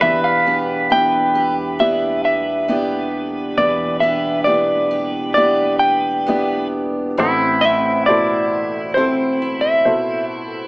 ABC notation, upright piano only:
X:1
M:4/4
L:1/8
Q:1/4=67
K:Am
V:1 name="Upright piano"
[B,DGd]2 [B,EGe]2 [B,EGd]2 [B,EGd]2 | [B,EGd]2 [B,EGd]2 [B,EGd]2 [B,EGd]2 | [EABc]2 [B,,EAc]2 [CEAc]2 [B,,EAc]2 |]
V:2 name="Upright piano" clef=bass
[E,,E,]8 | [E,,E,]8 | [A,,,A,,]8 |]